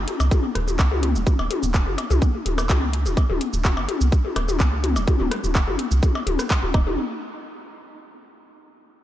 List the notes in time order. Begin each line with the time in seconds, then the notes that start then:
0.08 closed hi-hat, high tom
0.20 C#2, percussion blips, shaker
0.31 kick, high tom, shaker
0.55 D#1, cross-stick, closed hi-hat
0.68 high tom, shaker
0.79 C#2, kick, clap, percussion blips, shaker
0.92 high tom
1.03 closed hi-hat, mid tom
1.15 D#1, shaker
1.27 kick, high tom, shaker
1.39 D#1, percussion blips
1.51 closed hi-hat, high tom
1.63 D#1, shaker
1.74 kick, clap, shaker
1.87 F#1, high tom
1.98 closed hi-hat, percussion blips
2.10 C#2, high tom, shaker
2.22 kick, shaker
2.46 D#1, closed hi-hat, high tom
2.58 cross-stick, percussion blips, shaker
2.69 C#2, kick, clap, high tom, shaker
2.93 closed hi-hat
3.06 D#1, high tom, shaker
3.17 kick, percussion blips, shaker
3.30 D#1, high tom
3.41 closed hi-hat
3.53 D#1, shaker
3.65 kick, clap, high tom, shaker
3.77 F#1, percussion blips
3.88 closed hi-hat, high tom
4.01 C#2, shaker
4.12 kick, shaker
4.25 high tom
4.36 D#1, cross-stick, closed hi-hat, percussion blips
4.49 high tom, shaker
4.60 C#2, kick, clap, shaker
4.84 closed hi-hat, mid tom, high tom
4.96 D#1, percussion blips, shaker
5.07 kick, high tom, shaker
5.20 D#1, mid tom
5.31 cross-stick, closed hi-hat
5.44 D#1, high tom, shaker
5.55 kick, clap, percussion blips, shaker
5.68 F#1, high tom
5.79 closed hi-hat
5.91 C#2, shaker
6.03 kick, high tom, shaker
6.15 percussion blips
6.27 D#1, closed hi-hat, high tom
6.39 cross-stick, shaker
6.50 kick, clap, shaker
6.63 D#1, high tom
6.74 D#1 D#4, kick, percussion blips
6.87 high tom